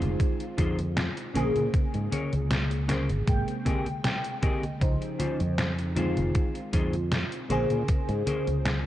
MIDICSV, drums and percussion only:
0, 0, Header, 1, 2, 480
1, 0, Start_track
1, 0, Key_signature, -4, "minor"
1, 0, Tempo, 769231
1, 1085, Time_signature, 4, 2, 24, 8
1, 5531, End_track
2, 0, Start_track
2, 0, Title_t, "Drums"
2, 11, Note_on_c, 9, 42, 41
2, 11, Note_on_c, 9, 63, 37
2, 74, Note_off_c, 9, 42, 0
2, 74, Note_off_c, 9, 63, 0
2, 125, Note_on_c, 9, 36, 118
2, 125, Note_on_c, 9, 42, 69
2, 125, Note_on_c, 9, 63, 27
2, 187, Note_off_c, 9, 36, 0
2, 187, Note_off_c, 9, 42, 0
2, 187, Note_off_c, 9, 63, 0
2, 251, Note_on_c, 9, 42, 40
2, 313, Note_off_c, 9, 42, 0
2, 364, Note_on_c, 9, 42, 96
2, 364, Note_on_c, 9, 63, 63
2, 365, Note_on_c, 9, 36, 67
2, 426, Note_off_c, 9, 42, 0
2, 426, Note_off_c, 9, 63, 0
2, 428, Note_off_c, 9, 36, 0
2, 492, Note_on_c, 9, 42, 41
2, 492, Note_on_c, 9, 63, 37
2, 554, Note_off_c, 9, 42, 0
2, 554, Note_off_c, 9, 63, 0
2, 605, Note_on_c, 9, 38, 123
2, 605, Note_on_c, 9, 42, 68
2, 605, Note_on_c, 9, 63, 27
2, 667, Note_off_c, 9, 38, 0
2, 667, Note_off_c, 9, 42, 0
2, 667, Note_off_c, 9, 63, 0
2, 731, Note_on_c, 9, 42, 42
2, 794, Note_off_c, 9, 42, 0
2, 846, Note_on_c, 9, 42, 97
2, 846, Note_on_c, 9, 63, 64
2, 908, Note_off_c, 9, 42, 0
2, 908, Note_off_c, 9, 63, 0
2, 972, Note_on_c, 9, 42, 41
2, 972, Note_on_c, 9, 63, 35
2, 1034, Note_off_c, 9, 42, 0
2, 1034, Note_off_c, 9, 63, 0
2, 1085, Note_on_c, 9, 36, 122
2, 1085, Note_on_c, 9, 42, 67
2, 1085, Note_on_c, 9, 63, 27
2, 1147, Note_off_c, 9, 36, 0
2, 1147, Note_off_c, 9, 42, 0
2, 1147, Note_off_c, 9, 63, 0
2, 1210, Note_on_c, 9, 42, 38
2, 1273, Note_off_c, 9, 42, 0
2, 1325, Note_on_c, 9, 42, 91
2, 1325, Note_on_c, 9, 63, 62
2, 1388, Note_off_c, 9, 42, 0
2, 1388, Note_off_c, 9, 63, 0
2, 1452, Note_on_c, 9, 42, 41
2, 1452, Note_on_c, 9, 63, 36
2, 1514, Note_off_c, 9, 42, 0
2, 1514, Note_off_c, 9, 63, 0
2, 1564, Note_on_c, 9, 38, 123
2, 1564, Note_on_c, 9, 42, 65
2, 1564, Note_on_c, 9, 63, 26
2, 1627, Note_off_c, 9, 38, 0
2, 1627, Note_off_c, 9, 42, 0
2, 1627, Note_off_c, 9, 63, 0
2, 1691, Note_on_c, 9, 42, 39
2, 1754, Note_off_c, 9, 42, 0
2, 1803, Note_on_c, 9, 38, 67
2, 1803, Note_on_c, 9, 42, 92
2, 1803, Note_on_c, 9, 63, 62
2, 1866, Note_off_c, 9, 38, 0
2, 1866, Note_off_c, 9, 42, 0
2, 1866, Note_off_c, 9, 63, 0
2, 1931, Note_on_c, 9, 42, 40
2, 1931, Note_on_c, 9, 63, 36
2, 1994, Note_off_c, 9, 42, 0
2, 1994, Note_off_c, 9, 63, 0
2, 2043, Note_on_c, 9, 42, 65
2, 2043, Note_on_c, 9, 63, 27
2, 2044, Note_on_c, 9, 36, 125
2, 2106, Note_off_c, 9, 36, 0
2, 2106, Note_off_c, 9, 42, 0
2, 2106, Note_off_c, 9, 63, 0
2, 2171, Note_on_c, 9, 42, 40
2, 2233, Note_off_c, 9, 42, 0
2, 2284, Note_on_c, 9, 36, 66
2, 2284, Note_on_c, 9, 42, 91
2, 2284, Note_on_c, 9, 63, 61
2, 2346, Note_off_c, 9, 36, 0
2, 2346, Note_off_c, 9, 42, 0
2, 2346, Note_off_c, 9, 63, 0
2, 2410, Note_on_c, 9, 42, 40
2, 2410, Note_on_c, 9, 63, 35
2, 2473, Note_off_c, 9, 42, 0
2, 2473, Note_off_c, 9, 63, 0
2, 2523, Note_on_c, 9, 38, 125
2, 2523, Note_on_c, 9, 42, 67
2, 2523, Note_on_c, 9, 63, 27
2, 2585, Note_off_c, 9, 38, 0
2, 2585, Note_off_c, 9, 42, 0
2, 2585, Note_off_c, 9, 63, 0
2, 2648, Note_on_c, 9, 42, 42
2, 2710, Note_off_c, 9, 42, 0
2, 2762, Note_on_c, 9, 42, 95
2, 2762, Note_on_c, 9, 63, 64
2, 2764, Note_on_c, 9, 36, 107
2, 2824, Note_off_c, 9, 42, 0
2, 2824, Note_off_c, 9, 63, 0
2, 2826, Note_off_c, 9, 36, 0
2, 2891, Note_on_c, 9, 42, 39
2, 2891, Note_on_c, 9, 63, 35
2, 2953, Note_off_c, 9, 42, 0
2, 2953, Note_off_c, 9, 63, 0
2, 3003, Note_on_c, 9, 42, 64
2, 3003, Note_on_c, 9, 63, 27
2, 3004, Note_on_c, 9, 36, 114
2, 3066, Note_off_c, 9, 36, 0
2, 3066, Note_off_c, 9, 42, 0
2, 3066, Note_off_c, 9, 63, 0
2, 3130, Note_on_c, 9, 42, 39
2, 3193, Note_off_c, 9, 42, 0
2, 3243, Note_on_c, 9, 42, 89
2, 3243, Note_on_c, 9, 63, 63
2, 3305, Note_off_c, 9, 42, 0
2, 3305, Note_off_c, 9, 63, 0
2, 3370, Note_on_c, 9, 42, 40
2, 3370, Note_on_c, 9, 63, 36
2, 3432, Note_off_c, 9, 42, 0
2, 3432, Note_off_c, 9, 63, 0
2, 3483, Note_on_c, 9, 38, 121
2, 3483, Note_on_c, 9, 42, 63
2, 3483, Note_on_c, 9, 63, 27
2, 3545, Note_off_c, 9, 38, 0
2, 3545, Note_off_c, 9, 42, 0
2, 3545, Note_off_c, 9, 63, 0
2, 3610, Note_on_c, 9, 42, 38
2, 3672, Note_off_c, 9, 42, 0
2, 3722, Note_on_c, 9, 42, 89
2, 3722, Note_on_c, 9, 63, 62
2, 3784, Note_off_c, 9, 42, 0
2, 3784, Note_off_c, 9, 63, 0
2, 3849, Note_on_c, 9, 42, 38
2, 3849, Note_on_c, 9, 63, 36
2, 3911, Note_off_c, 9, 42, 0
2, 3911, Note_off_c, 9, 63, 0
2, 3960, Note_on_c, 9, 42, 65
2, 3960, Note_on_c, 9, 63, 27
2, 3963, Note_on_c, 9, 36, 116
2, 4023, Note_off_c, 9, 42, 0
2, 4023, Note_off_c, 9, 63, 0
2, 4025, Note_off_c, 9, 36, 0
2, 4087, Note_on_c, 9, 42, 38
2, 4149, Note_off_c, 9, 42, 0
2, 4200, Note_on_c, 9, 42, 90
2, 4200, Note_on_c, 9, 63, 63
2, 4203, Note_on_c, 9, 36, 66
2, 4262, Note_off_c, 9, 42, 0
2, 4262, Note_off_c, 9, 63, 0
2, 4265, Note_off_c, 9, 36, 0
2, 4326, Note_on_c, 9, 42, 39
2, 4326, Note_on_c, 9, 63, 38
2, 4389, Note_off_c, 9, 42, 0
2, 4389, Note_off_c, 9, 63, 0
2, 4440, Note_on_c, 9, 38, 125
2, 4440, Note_on_c, 9, 42, 63
2, 4440, Note_on_c, 9, 63, 27
2, 4503, Note_off_c, 9, 38, 0
2, 4503, Note_off_c, 9, 42, 0
2, 4503, Note_off_c, 9, 63, 0
2, 4568, Note_on_c, 9, 42, 40
2, 4630, Note_off_c, 9, 42, 0
2, 4680, Note_on_c, 9, 42, 90
2, 4680, Note_on_c, 9, 63, 64
2, 4743, Note_off_c, 9, 42, 0
2, 4743, Note_off_c, 9, 63, 0
2, 4806, Note_on_c, 9, 42, 38
2, 4806, Note_on_c, 9, 63, 36
2, 4868, Note_off_c, 9, 42, 0
2, 4868, Note_off_c, 9, 63, 0
2, 4919, Note_on_c, 9, 42, 66
2, 4919, Note_on_c, 9, 63, 29
2, 4921, Note_on_c, 9, 36, 116
2, 4982, Note_off_c, 9, 42, 0
2, 4982, Note_off_c, 9, 63, 0
2, 4984, Note_off_c, 9, 36, 0
2, 5046, Note_on_c, 9, 42, 38
2, 5109, Note_off_c, 9, 42, 0
2, 5160, Note_on_c, 9, 42, 88
2, 5160, Note_on_c, 9, 63, 65
2, 5223, Note_off_c, 9, 42, 0
2, 5223, Note_off_c, 9, 63, 0
2, 5288, Note_on_c, 9, 42, 39
2, 5288, Note_on_c, 9, 63, 36
2, 5350, Note_off_c, 9, 42, 0
2, 5350, Note_off_c, 9, 63, 0
2, 5401, Note_on_c, 9, 38, 116
2, 5401, Note_on_c, 9, 42, 62
2, 5401, Note_on_c, 9, 63, 28
2, 5463, Note_off_c, 9, 38, 0
2, 5463, Note_off_c, 9, 42, 0
2, 5463, Note_off_c, 9, 63, 0
2, 5531, End_track
0, 0, End_of_file